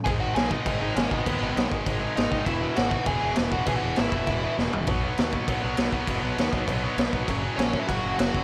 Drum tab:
CC |x-x-x-x-|x-x-x-x-|x-x-x-x-|x-x-x---|
SD |--o---o-|--o---o-|--o---o-|--o---o-|
FT |--------|--------|--------|-------o|
BD |o--oo--o|o--oo--o|o--oo--o|o--oo---|

CC |x-x-x-x-|x-x-x-x-|x-x-x-x-|
SD |--o---o-|--o---o-|--o---o-|
FT |--------|--------|--------|
BD |o--oo--o|o--oo--o|o--oo--o|